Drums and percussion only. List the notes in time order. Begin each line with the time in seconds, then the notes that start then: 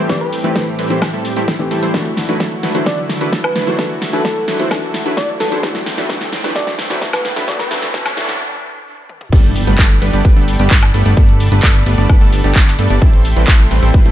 0.09 kick, snare, closed hi-hat
0.21 closed hi-hat
0.33 open hi-hat
0.44 closed hi-hat
0.56 kick, snare, closed hi-hat
0.67 closed hi-hat
0.79 open hi-hat
0.90 closed hi-hat
1.02 kick, snare, closed hi-hat, high woodblock
1.13 closed hi-hat
1.25 open hi-hat
1.36 closed hi-hat
1.48 kick, snare, closed hi-hat
1.60 closed hi-hat
1.71 open hi-hat
1.83 closed hi-hat
1.94 kick, snare, closed hi-hat
2.06 closed hi-hat
2.17 snare, open hi-hat
2.29 closed hi-hat
2.40 kick, snare, closed hi-hat
2.52 closed hi-hat
2.63 snare, open hi-hat
2.75 closed hi-hat
2.86 kick, snare, closed hi-hat
2.98 closed hi-hat
3.09 snare, open hi-hat
3.21 closed hi-hat
3.33 kick, snare, closed hi-hat
3.44 closed hi-hat, high woodblock
3.56 snare, open hi-hat
3.67 closed hi-hat
3.79 kick, snare, closed hi-hat
3.90 closed hi-hat
4.02 snare, open hi-hat
4.13 closed hi-hat
4.25 kick, snare, closed hi-hat
4.36 closed hi-hat
4.48 snare, open hi-hat
4.60 closed hi-hat
4.71 kick, snare, closed hi-hat, high woodblock
4.83 closed hi-hat
4.94 snare, open hi-hat
5.06 closed hi-hat
5.17 kick, snare, closed hi-hat
5.29 closed hi-hat
5.40 snare, open hi-hat
5.52 closed hi-hat
5.63 kick, snare, closed hi-hat
5.75 snare, closed hi-hat
5.86 snare, open hi-hat
5.98 snare, closed hi-hat
6.09 kick, snare, closed hi-hat
6.21 snare, closed hi-hat
6.33 snare, open hi-hat
6.44 snare, closed hi-hat
6.56 kick, snare, closed hi-hat
6.67 snare, closed hi-hat
6.79 snare, open hi-hat
6.90 snare, closed hi-hat
7.02 kick, snare, closed hi-hat
7.13 snare, closed hi-hat, high woodblock
7.25 snare, open hi-hat
7.36 snare, closed hi-hat
7.48 kick, snare, closed hi-hat
7.60 snare, closed hi-hat
7.71 snare, open hi-hat
7.83 snare, closed hi-hat
7.94 kick, snare, closed hi-hat
8.06 snare, closed hi-hat, high woodblock
8.17 snare, open hi-hat
8.29 snare, closed hi-hat
9.09 high tom
9.21 mid tom
9.33 kick, closed hi-hat, crash
9.44 closed hi-hat
9.56 open hi-hat
9.67 closed hi-hat
9.78 kick, clap, closed hi-hat
9.90 closed hi-hat
10.02 open hi-hat
10.13 closed hi-hat
10.25 kick, closed hi-hat
10.36 closed hi-hat
10.48 open hi-hat
10.60 closed hi-hat
10.71 kick, clap, closed hi-hat
10.83 closed hi-hat, high woodblock
10.94 open hi-hat
11.06 closed hi-hat
11.17 kick, closed hi-hat
11.29 closed hi-hat
11.40 open hi-hat
11.52 closed hi-hat
11.63 kick, clap, closed hi-hat
11.75 closed hi-hat
11.86 open hi-hat
11.98 closed hi-hat
12.09 kick, closed hi-hat, high woodblock
12.21 closed hi-hat
12.33 open hi-hat
12.44 closed hi-hat
12.55 kick, clap, closed hi-hat
12.67 clap, closed hi-hat
12.79 open hi-hat
12.90 closed hi-hat
13.02 kick, closed hi-hat
13.13 closed hi-hat
13.25 open hi-hat
13.36 closed hi-hat
13.48 kick, clap, closed hi-hat
13.60 closed hi-hat
13.71 open hi-hat
13.83 closed hi-hat
13.94 kick, closed hi-hat
14.06 closed hi-hat